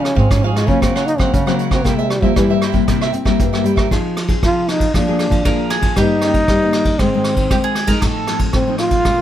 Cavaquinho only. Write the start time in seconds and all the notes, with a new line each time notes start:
0.03 muted cavaquinho stroke
0.16 G#4 C#5 F5
0.30 F4 G#4 C#5 F5
0.44 G#4 C#5 F5
0.56 F4 G#4 C#5 F5
0.83 F#4 A#4 C#5 F#5
0.95 A#4 C#5 F#5
1.09 muted cavaquinho stroke
1.20 A#4 C#5 F#5
1.47 A#4 C#5 F#5
1.59 F#4 A#4 C#5 F#5
1.72 A#4 C#5 F#5
1.86 E4 A#4 C5 E5
1.99 A#4 C5 E5
2.11 muted cavaquinho stroke
2.23 A#4 C5 E5
2.38 E4 A#4 C5 E5
2.50 A#4 C5 E5
2.62 E4 A#4 C5 E5
2.88 E4 A#4 C5 E5
3.02 A#4 C5 E5
3.13 muted cavaquinho stroke
3.26 A#4 C5 E5
3.53 A#4 C5 E5
3.64 E4 A#4 C5 E5
3.76 A#4 C5 E5